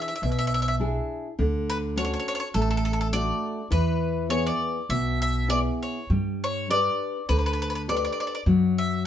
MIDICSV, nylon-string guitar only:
0, 0, Header, 1, 2, 480
1, 0, Start_track
1, 0, Tempo, 580271
1, 1150, Time_signature, 4, 2, 24, 8
1, 3065, Tempo, 594059
1, 7397, End_track
2, 0, Start_track
2, 0, Title_t, "Nylon-string guitar"
2, 0, Program_c, 0, 24
2, 0, Note_on_c, 0, 62, 43
2, 0, Note_on_c, 0, 64, 39
2, 0, Note_on_c, 0, 68, 42
2, 86, Note_off_c, 0, 62, 0
2, 86, Note_off_c, 0, 64, 0
2, 89, Note_off_c, 0, 68, 0
2, 180, Note_on_c, 0, 47, 63
2, 652, Note_off_c, 0, 47, 0
2, 658, Note_on_c, 0, 62, 46
2, 666, Note_on_c, 0, 64, 42
2, 666, Note_on_c, 0, 68, 51
2, 1047, Note_off_c, 0, 62, 0
2, 1050, Note_off_c, 0, 64, 0
2, 1052, Note_off_c, 0, 68, 0
2, 1146, Note_on_c, 0, 50, 74
2, 1610, Note_off_c, 0, 50, 0
2, 1620, Note_on_c, 0, 61, 43
2, 1629, Note_on_c, 0, 62, 41
2, 1633, Note_on_c, 0, 66, 48
2, 2004, Note_off_c, 0, 61, 0
2, 2009, Note_off_c, 0, 62, 0
2, 2011, Note_off_c, 0, 66, 0
2, 2109, Note_on_c, 0, 57, 60
2, 2569, Note_off_c, 0, 57, 0
2, 2586, Note_on_c, 0, 57, 46
2, 2589, Note_on_c, 0, 62, 38
2, 2591, Note_on_c, 0, 66, 44
2, 2972, Note_off_c, 0, 57, 0
2, 2973, Note_off_c, 0, 62, 0
2, 2974, Note_off_c, 0, 66, 0
2, 3065, Note_on_c, 0, 52, 66
2, 3529, Note_off_c, 0, 52, 0
2, 3539, Note_on_c, 0, 59, 46
2, 3545, Note_on_c, 0, 64, 36
2, 3549, Note_on_c, 0, 68, 47
2, 3924, Note_off_c, 0, 59, 0
2, 3925, Note_off_c, 0, 64, 0
2, 3930, Note_off_c, 0, 68, 0
2, 4029, Note_on_c, 0, 47, 54
2, 4496, Note_off_c, 0, 47, 0
2, 4499, Note_on_c, 0, 59, 43
2, 4501, Note_on_c, 0, 64, 36
2, 4507, Note_on_c, 0, 68, 45
2, 4895, Note_off_c, 0, 59, 0
2, 4895, Note_off_c, 0, 64, 0
2, 4899, Note_off_c, 0, 68, 0
2, 5001, Note_on_c, 0, 55, 65
2, 5469, Note_off_c, 0, 55, 0
2, 5480, Note_on_c, 0, 62, 46
2, 5485, Note_on_c, 0, 67, 34
2, 5486, Note_on_c, 0, 71, 49
2, 5864, Note_off_c, 0, 62, 0
2, 5866, Note_off_c, 0, 67, 0
2, 5867, Note_off_c, 0, 71, 0
2, 5960, Note_on_c, 0, 50, 63
2, 6421, Note_off_c, 0, 50, 0
2, 6437, Note_on_c, 0, 62, 44
2, 6439, Note_on_c, 0, 67, 42
2, 6447, Note_on_c, 0, 71, 53
2, 6816, Note_off_c, 0, 62, 0
2, 6817, Note_off_c, 0, 67, 0
2, 6821, Note_off_c, 0, 71, 0
2, 6914, Note_on_c, 0, 54, 62
2, 7373, Note_off_c, 0, 54, 0
2, 7397, End_track
0, 0, End_of_file